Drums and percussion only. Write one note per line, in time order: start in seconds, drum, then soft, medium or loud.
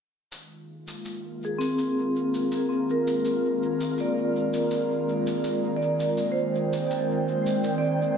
0.32 shaker soft
0.88 shaker soft
1.05 shaker soft
1.61 shaker soft
1.78 shaker soft
2.34 shaker soft
2.52 shaker soft
3.07 shaker soft
3.25 shaker soft
3.80 shaker soft
3.98 shaker soft
4.53 shaker soft
4.71 shaker soft
5.27 shaker soft
5.44 shaker soft
6.00 shaker soft
6.17 shaker soft
6.73 shaker soft
6.91 shaker soft
7.46 shaker soft
7.64 shaker soft